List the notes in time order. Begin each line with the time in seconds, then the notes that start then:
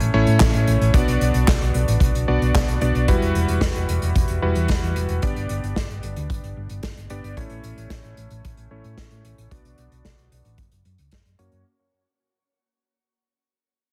Already playing: A3 C#4 E4 C#5
0.00 A1, closed hi-hat
0.14 A1 A3 C#4 E4 C#5
0.27 A2, closed hi-hat
0.40 A1, kick, snare, clap, closed hi-hat
0.54 A2, closed hi-hat
0.67 A1, closed hi-hat
0.81 A1, closed hi-hat
0.94 B1 B3 D4 F#4 D5, kick, closed hi-hat
1.08 B1, closed hi-hat
1.21 B1, closed hi-hat
1.34 B1, closed hi-hat
1.48 B1, kick, snare, clap, closed hi-hat
1.61 B1, closed hi-hat
1.74 B1, closed hi-hat
1.88 A1, closed hi-hat
2.00 B1, kick, closed hi-hat
2.15 B1, closed hi-hat
2.28 B1 B3 D4 F#4 D5
2.41 B1, closed hi-hat
2.55 B1, kick, snare, clap, closed hi-hat
2.68 B1, closed hi-hat
2.81 B1 B3 D4 F#4 D5, closed hi-hat
2.95 B1, closed hi-hat
3.08 E1 G3 E4 F#4 B4, kick, closed hi-hat
3.22 E1, closed hi-hat
3.35 E1, closed hi-hat
3.48 E1, closed hi-hat
3.61 kick, snare, closed hi-hat
3.75 E1, closed hi-hat
3.89 E1, closed hi-hat
4.02 E1, closed hi-hat
4.16 E1, kick, closed hi-hat
4.28 E1, closed hi-hat
4.42 E1 G3 E4 F#4 B4
4.55 E2, closed hi-hat
4.68 E1, kick, snare, closed hi-hat
4.83 E2, closed hi-hat
4.96 E1, closed hi-hat
5.09 E1, closed hi-hat
5.22 G1 B3 D4 G4 D5, kick, closed hi-hat
5.36 G1, closed hi-hat
5.49 G1, closed hi-hat
5.63 G1, closed hi-hat
5.76 G1, kick, snare, closed hi-hat
5.90 G1, closed hi-hat
6.03 G1, closed hi-hat
6.16 D2, closed hi-hat
6.30 G1, kick, closed hi-hat
6.43 G1, closed hi-hat
6.57 G1
6.69 G1, closed hi-hat
6.83 kick, snare, closed hi-hat
6.97 G1, closed hi-hat
7.10 G1 B3 D4 G4 D5, closed hi-hat
7.24 G1, closed hi-hat
7.37 A1 A3 C#4 E4 C#5, kick, closed hi-hat
7.50 A1, closed hi-hat
7.64 A1, closed hi-hat
7.77 A1, closed hi-hat
7.90 A1, kick, snare, closed hi-hat
8.04 A1, closed hi-hat
8.17 A1, closed hi-hat
8.30 A1, closed hi-hat
8.45 A1, kick, closed hi-hat
8.57 A1, closed hi-hat
8.71 A1 A3 C#4 E4 C#5
8.84 A2, closed hi-hat
8.97 kick, snare, closed hi-hat
9.11 A2, closed hi-hat
9.25 A1, closed hi-hat
9.38 A1, closed hi-hat
9.51 B1 B3 D4 F#4 D5, kick, closed hi-hat
9.65 B1, closed hi-hat
9.78 B1, closed hi-hat
9.92 B1, closed hi-hat
10.05 B1, kick, snare, closed hi-hat
10.18 B1, closed hi-hat
10.32 B1, closed hi-hat
10.45 A1, closed hi-hat
10.58 F#1, kick, closed hi-hat
10.72 F#1, closed hi-hat
10.85 F#2, closed hi-hat
10.98 C#2, closed hi-hat
11.11 F#2, kick, snare, closed hi-hat
11.25 F#2, closed hi-hat
11.39 F#2 A#3 C#4 F#4 C#5, closed hi-hat
11.52 F#2, closed hi-hat